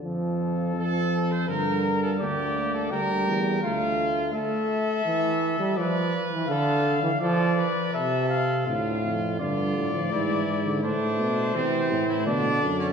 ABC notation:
X:1
M:3/4
L:1/16
Q:1/4=84
K:Dm
V:1 name="Trumpet"
A8 B4 | d4 g4 f4 | e8 d2 z2 | f4 d4 e2 f2 |
f4 d8 | c8 d4 |]
V:2 name="Trumpet"
z4 A3 c B3 A | G3 A B4 F4 | A8 =B4 | A3 z A2 =B2 A4 |
F4 F4 E4 | D4 C3 E D3 ^C |]
V:3 name="Trombone" clef=bass
F,4 F,4 D,4 | B,4 G,4 A,4 | A,4 E,3 G, F,3 E, | D,3 E, F,3 z C,4 |
A,,4 D,3 F, E,3 D, | A,4 E,4 D,4 |]
V:4 name="Euphonium" clef=bass
F,,8 G,,4 | D,,4 D,,2 E,,2 D,,4 | z12 | z12 |
D,,2 F,,2 G,,2 A,,2 ^G,,2 G,,2 | A,,2 =B,,2 C,2 A,,2 B,,2 ^F,,2 |]